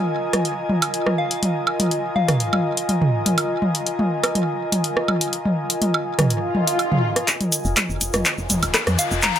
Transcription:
Already playing: F4 A#4 D#5 G#5
0.33 cross-stick, closed hi-hat, high tom
0.45 closed hi-hat
0.69 high tom
0.82 closed hi-hat, high woodblock
0.94 closed hi-hat
1.07 cross-stick, high tom
1.18 F5
1.31 closed hi-hat
1.43 closed hi-hat, high tom
1.67 high woodblock
1.80 closed hi-hat, high tom
1.91 closed hi-hat
2.16 F5, high tom
2.28 cross-stick, closed hi-hat, mid tom
2.40 closed hi-hat
2.53 high tom, high woodblock
2.77 closed hi-hat
2.89 closed hi-hat, high tom
3.02 mid tom
3.26 closed hi-hat, high tom
3.38 closed hi-hat, high woodblock
3.62 high tom
3.75 closed hi-hat
3.87 closed hi-hat
3.99 high tom
4.24 cross-stick, closed hi-hat, high woodblock
4.35 closed hi-hat, high tom
4.72 closed hi-hat, high tom
4.84 closed hi-hat
4.97 cross-stick
5.08 high tom, high woodblock
5.21 closed hi-hat
5.33 closed hi-hat
5.45 high tom
5.70 closed hi-hat
5.82 closed hi-hat, high tom
5.94 high woodblock
6.19 cross-stick, closed hi-hat, mid tom, high tom
6.30 closed hi-hat, swell
6.55 high tom
6.67 closed hi-hat
6.79 closed hi-hat, high woodblock
6.92 mid tom, high tom
7.16 cross-stick, closed hi-hat
7.28 kick, clap, closed hi-hat, riser, shaker
7.41 closed hi-hat, high tom, shaker
7.52 closed hi-hat, shaker
7.65 F1, shaker
7.77 kick, clap, closed hi-hat, high tom, high woodblock, shaker
7.89 F1, shaker
8.01 F1, closed hi-hat, shaker
8.13 F1, cross-stick, closed hi-hat, high tom, shaker
8.25 kick, clap, closed hi-hat, shaker
8.38 F1, shaker
8.50 F1, closed hi-hat, high tom, shaker
8.62 D#1, closed hi-hat, high woodblock, shaker
8.74 kick, cross-stick, clap, closed hi-hat, shaker
8.87 F2, kick, cross-stick, closed hi-hat, high tom, shaker
8.99 F5, closed hi-hat, shaker
9.11 F1, shaker
9.22 A#5, kick, clap, closed hi-hat, high tom, shaker
9.36 A#5, closed hi-hat, shaker

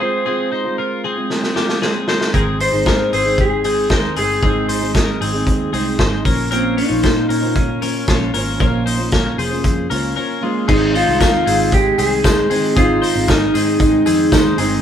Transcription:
0.00 F3 G#3 C4 F4 G#4 C5
0.26 F3 G#3 C4 F4 G#4
0.52 D#4 C5
0.64 G#3 C4 F4
0.78 F4 A#4
1.04 C4 G#4
1.15 G#3 C4 F4
1.30 snare
1.43 snare
1.55 F3 G#3 A#3 C4 F4 G4, snare
1.69 snare
1.81 F3 G#3 C4 F4 G#4, snare
2.07 F3 G#3 C4 D#4 F4 C5, snare
2.21 snare
2.34 G#1 G#2 D#3 G#3 C4 D#4 G#4 A#4, kick, closed hi-hat
2.60 D#4 C5, open hi-hat
2.72 G#1 G#3 C4 D#4 G#4
2.86 G#2 D#4 A#4, kick, snare, closed hi-hat
3.13 G#1 C4 G#4 C5, open hi-hat
3.24 G#3 C4 D#4 G#4
3.38 G#4, kick, closed hi-hat
3.63 G#3 C4 D#4 G#4, open hi-hat
3.89 D#2 G#3 C4 D#4 G#4 A#4 C5, kick, snare, closed hi-hat
4.16 G1 G#3 C4 D#4 G#4, open hi-hat
4.42 G#1 G#2 D#3 G#3 C4 D#4 G#4, kick, closed hi-hat
4.69 D#4 C5, open hi-hat
4.81 G#3 C4 D#4 G#4
4.94 D#4 A#4, kick, snare, closed hi-hat
5.21 G#1 C4 G#4, open hi-hat
5.33 G#3 C4 D#4 G#4
5.47 D#2, kick, closed hi-hat
5.72 C2 G#3 C4 D#4 G#4, open hi-hat
5.98 G#1 G#3 C4 D#4 G#4 C5, kick, snare, closed hi-hat
6.25 A#1 A#3 C#4 F4 A#4 C5, kick, open hi-hat
6.51 A#2 F3 A#3 C4 C#4 F4 A#4 C5, closed hi-hat
6.77 D#4 F4 C#5, open hi-hat
6.90 A#1 A#3 C#4 F4 C5
7.03 A#2 F4 C5, kick, snare, closed hi-hat
7.29 A#2 C#4 A#4, open hi-hat
7.43 A#3 C#4 F4 C5
7.55 C#4, kick, closed hi-hat
7.82 A#3 C#4 F4 A#4 C5, open hi-hat
8.07 A#1 A#3 C#4 F4 C5 C#5, kick, snare, closed hi-hat
8.33 G#1 A#3 C#4 F4 A#4 C5, open hi-hat
8.60 A#1 A#2 F3 A#3 C#4 F4 A#4 C5, kick, closed hi-hat
8.86 D#4 C5, open hi-hat
8.98 A#3 C#4 F4 C5
9.12 C#4 A#4, kick, snare, closed hi-hat
9.38 F1 G#4 C5, open hi-hat
9.50 A#3 C#4 F4 C5
9.64 F2, kick, closed hi-hat
9.89 C#2 A#3 C#4 F4 A#4 C5, open hi-hat
10.15 A#3 C#4 F4 A#4 C5
10.41 G#3 A#3 C#4 F4 C5
10.67 G#1 D#3 G#3 C4 D#4 G#4, kick, crash
10.71 D#4
10.94 D#4 F4 C5, open hi-hat, tambourine
11.06 C2 G#3 C4 D#4
11.20 D#4 A#4, kick, snare, closed hi-hat, tambourine
11.45 G#1 D#3 G#3 C4 D#4 G#4, open hi-hat, tambourine
11.72 D#3 G#3 C4 D#4 G4, kick, closed hi-hat, tambourine
11.98 C2 C4 G#4, open hi-hat, tambourine
12.24 G#2 D#3 G#3 C4 D#4 C5, kick, snare, closed hi-hat, tambourine
12.50 G#2 D#3 G#3 C4 D#4 G#4, open hi-hat, tambourine
12.74 G#1 D#3 G#3 C4 D#4 F4 G#4, kick, closed hi-hat, tambourine
12.78 C4 D#4
13.02 D#4 C5, open hi-hat, tambourine
13.14 G#1 G#3 C4 D#4
13.28 D#4 A#4, kick, snare, closed hi-hat, tambourine
13.53 G#2 D#3 G#3 C4 D#4 G#4, open hi-hat, tambourine
13.79 G#2 D#3 G#3 C4 D#4, kick, closed hi-hat, tambourine
14.06 F2 C4 G#4, open hi-hat, tambourine
14.32 D#2 G#2 D#3 G#3 C4 D#4 C5, kick, snare, closed hi-hat, tambourine
14.58 G1 G#2 D#3 G#3 C4 D#4 G#4, open hi-hat, tambourine

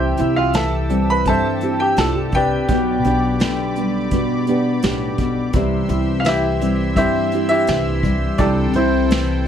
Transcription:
Already playing: C2 C3 E3 G3 G4 C5 E5 G5 E6
0.17 C2 E4, closed hi-hat
0.36 F4 F5
0.53 E3 A4 E5 A5, snare, closed hi-hat
0.89 G3 C4, closed hi-hat
1.10 B4 B5
1.25 G2 C4 A4 C5 E5 A5, kick, closed hi-hat
1.61 C4 E4 G4, closed hi-hat
1.80 G4 G5
1.96 C2 D3 F4 A4 A5, snare, closed hi-hat
2.15 G4
2.32 C3 B4 G5, kick, closed hi-hat
2.36 G4 D5
2.68 B1 B2 B3 D5 B5 D6, kick, closed hi-hat
3.04 B1 D4 G4, closed hi-hat
3.40 D3, snare, closed hi-hat
3.76 G3 B3, closed hi-hat
4.11 B2 B3, kick, closed hi-hat
4.47 B3 D4 G4, closed hi-hat
4.82 B1 A2 G4, snare, closed hi-hat
5.18 B2, kick, closed hi-hat
5.52 C2 C3 E3 G3 C4 E5 C6 E6, kick, closed hi-hat
5.57 E4
5.89 C2 E4, closed hi-hat
6.20 E3 F5
6.25 E4 G4 E5, snare, closed hi-hat
6.61 G3 C4, closed hi-hat
6.95 G2 C4 E4 G4 C5 E5, kick, closed hi-hat
7.32 C4 E4 G4, closed hi-hat
7.49 E4 G4 E5
7.67 C2 E3 G4, snare, closed hi-hat
8.03 G3, kick, closed hi-hat
8.37 C2 C3 G3 D4 G4 A4 D5 G5, kick, closed hi-hat
8.73 C2 C4 E4 C5, closed hi-hat
9.10 E3, snare, closed hi-hat

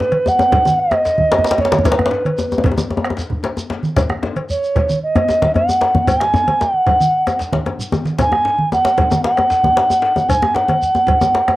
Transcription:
Already playing: B4
0.00 djembe slap, djembe tone
0.12 cowbell, high conga
0.26 F#5, djembe tone, high conga, shekere
0.39 djembe tone, shekere
0.52 bombo rim, bombo low, cowbell, djembe slap, djembe bass, low conga
0.65 djembe tone, high conga, shekere
0.80 D#5
0.91 bombo rim, cowbell, djembe tone
1.06 djembe slap, shekere
1.18 bombo low, high conga, low conga, djembe bass
1.32 bombo rim, cowbell, djembe slap, djembe tone
1.39 djembe bass
1.45 djembe slap, shekere
1.51 djembe slap
1.58 C#5, djembe slap, djembe bass
1.65 djembe slap
1.72 djembe slap, high conga, shekere
1.79 djembe bass
1.84 B4, bombo rim, bombo low, cowbell, djembe slap, high conga, djembe bass, low conga, shekere
1.92 djembe slap
1.98 bombo rim, high conga, djembe bass
2.06 djembe slap
2.11 bombo rim, djembe slap, djembe tone
2.25 cowbell, high conga
2.38 djembe tone, shekere
2.51 djembe slap, djembe tone, shekere
2.58 djembe tone
2.64 bombo rim, bombo low, cowbell, djembe slap, djembe bass, low conga
2.72 djembe tone
2.77 djembe tone, high conga, shekere
2.91 djembe tone
2.97 djembe tone
3.05 bombo rim, cowbell
3.10 djembe tone
3.17 djembe slap, shekere
3.30 bombo low, low conga, djembe bass
3.43 bombo rim, cowbell, djembe slap, djembe tone
3.57 djembe tone, shekere
3.70 djembe slap, djembe tone
3.83 high conga, shekere
3.96 bombo rim, bombo low, cowbell, djembe slap, high conga, low conga, djembe bass, shekere
4.10 bombo rim, djembe tone, high conga
4.22 bombo rim, djembe slap, djembe tone
4.36 cowbell, high conga
4.49 C#5, high conga, shekere
4.63 djembe slap, shekere
4.76 bombo rim, bombo low, cowbell, djembe slap, low conga
4.89 djembe tone, high conga, shekere
5.03 D#5
5.15 bombo rim, cowbell, djembe bass
5.28 djembe slap, djembe tone, shekere
5.42 bombo low, djembe slap, high conga, djembe bass, low conga
5.54 F#5, bombo rim, cowbell, djembe tone, djembe bass
5.69 djembe tone, shekere
5.81 djembe slap
5.95 high conga, djembe bass
6.07 G#5, bombo low, cowbell, djembe slap, high conga, djembe tone, djembe bass, low conga, shekere
6.20 bombo rim, djembe slap, high conga
6.34 djembe slap, djembe tone, djembe bass, shekere
6.48 cowbell, high conga, djembe tone
6.61 F#5, djembe slap, shekere
6.74 high conga
6.86 bombo low, cowbell, djembe slap, high conga, djembe bass, low conga
7.00 bombo rim, djembe tone, high conga, shekere
7.13 djembe slap
7.26 bombo rim, cowbell, high conga, djembe tone, shekere
7.39 bombo rim, djembe slap, shekere
7.52 bombo low, djembe slap, high conga, low conga, djembe bass
7.65 bombo rim, cowbell, high conga, djembe tone
7.79 low conga, djembe bass, shekere
7.92 djembe slap, high conga, djembe tone, shekere
8.05 bombo rim, djembe slap, high conga, shekere
8.18 G#5, bombo rim, bombo low, cowbell, djembe slap, high conga, low conga, djembe bass, shekere
8.32 bombo rim, djembe tone, high conga
8.45 bombo rim, djembe slap, djembe tone
8.58 high conga
8.72 F#5, high conga, djembe tone, shekere
8.85 djembe slap, shekere
8.97 bombo rim, bombo low, cowbell, djembe slap, djembe tone, djembe bass, low conga
9.10 djembe tone, high conga, shekere
9.24 F#5, djembe slap
9.37 bombo rim, cowbell, djembe tone
9.50 djembe slap, shekere
9.63 bombo low, high conga, djembe tone, djembe bass, low conga
9.76 bombo rim, cowbell, djembe slap, djembe tone
9.90 djembe tone, shekere
10.02 djembe slap
10.16 djembe tone, high conga, shekere
10.29 G#5, bombo low, cowbell, high conga, djembe bass, low conga, shekere
10.42 bombo rim, djembe tone, high conga
10.55 F#5, bombo rim, djembe slap, djembe tone
10.68 cowbell, djembe tone, high conga
10.82 shekere
10.95 djembe tone, shekere
11.07 bombo rim, bombo low, cowbell, djembe slap, djembe bass, low conga
11.21 djembe tone, high conga, shekere
11.35 djembe slap
11.48 bombo rim, cowbell, djembe tone

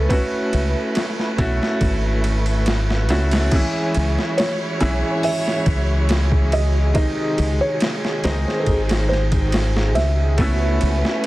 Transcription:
Already playing: A4 B4
0.09 A3 C#4 E4 F#4 B4, kick, ride
0.53 C#2, ride
0.95 snare, ride
1.19 snare
1.38 B1 A3 C#4 E4 F#4, kick, ride
1.63 snare
1.81 G#1, kick, ride
2.24 ride
2.46 ride
2.66 snare, ride
2.90 snare
3.09 C#2 A3 C#4 E4 F#4, snare, ride
3.31 snare, ride
3.52 E3 G#3 C#4 E4 F#4 C#5, kick, crash, ride
3.95 C#2, ride
4.19 snare
4.37 C#5, snare, ride
4.80 B1 E3 G#3 C#4 E4, ride
5.23 E5, open hi-hat
5.48 snare
5.66 C#2, kick, ride
6.09 snare, ride
6.32 kick
6.52 D#5, ride
6.94 C3 D#3 G#3 D#4 G#4 D#5, kick, ride
7.38 C#2, ride
7.61 C#5
7.80 snare, ride
8.05 snare
8.24 C#2 D#3 G#3 C4 D#4 C5, snare, ride
8.48 snare
8.60 A4
8.66 G#1 G#4, kick, ride
8.89 snare, ride
9.09 C5, snare
9.32 kick, ride
9.52 snare, ride
9.77 snare
9.95 C#2 E5, snare, ride
10.38 A3 B3 C#4 E4 B4, kick, ride
10.81 C#2, ride
11.05 snare

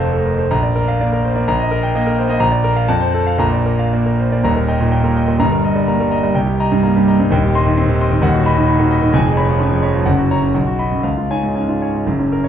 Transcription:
Already playing: F1 F2 A4 F5 A5
0.00 A3 C5
0.12 A4
0.25 A#4
0.38 A3 C5
0.51 A#1 A#5
0.63 D5
0.76 A#4
0.88 F5
1.00 A#3 D5
1.12 A#4
1.25 C5
1.35 A#3 D5
1.48 A#1 A#5
1.60 D#5
1.71 A#4
1.83 G5
1.95 A#3 D#5
2.07 A#4
2.18 C5
2.29 A#3 D#5
2.40 A#1 A#5
2.52 D5
2.64 A#4
2.76 F5
2.88 F2 A5
3.00 C5
3.14 A4
3.27 F5
3.38 A#1 A#2 A#5
3.53 D5
3.66 A#4
3.79 F5
3.93 A#3 D5
4.06 A#4
4.20 C5
4.32 A#3 D5
4.44 D#1 D#2 A#5
4.56 A#4
4.68 D#5 G5
4.80 A#2
4.92 A#3 G5
5.04 A#2 A#4
5.16 D#5 G5
5.28 A#2
5.39 G1 G2 A#5
5.52 A#4
5.64 D#5 A#5
5.76 G3
5.88 A#3 A#5
6.00 G3 A#4
6.11 D#5 A#5
6.23 G3
6.35 C2 G5
6.47 G4
6.60 D#5 A#5
6.72 G2
6.83 A#3 A#5
6.96 G2 G4
7.08 D#5 A#5
7.20 G2
7.31 D#1 D#2 G5
7.44 G4
7.55 D#5 C6
7.67 D#3
7.77 C4 C6
7.89 D#3 G4
8.00 D#5 C6
8.12 D#3
8.22 D#1 D#2 F#5
8.34 F#4
8.45 D#5 B5
8.57 D#3
8.68 D#4 B5
8.79 D#3 F#4
8.91 D#5 B5
9.02 D#3
9.13 F1 F2 G#5
9.26 G#4
9.37 C#5 B5
9.49 F3
9.60 C#4 B5
9.71 F3 G#4
9.83 C#5 B5
9.94 F3
10.05 F#1 F#2 F#5
10.18 F#4
10.31 C#5 A#5
10.42 C#3
10.54 B1 F#5
10.67 F#4
10.79 D#5 B5
10.92 F#2
11.03 C#2 F5
11.17 F4
11.30 D#4 C#5 G#5
11.43 G#2
11.55 C#4 G#5
11.68 G#2 F4
11.82 C#5 G#5
11.94 G#2
12.06 F#1 F#2
12.19 C#4
12.32 A#4
12.44 C#5

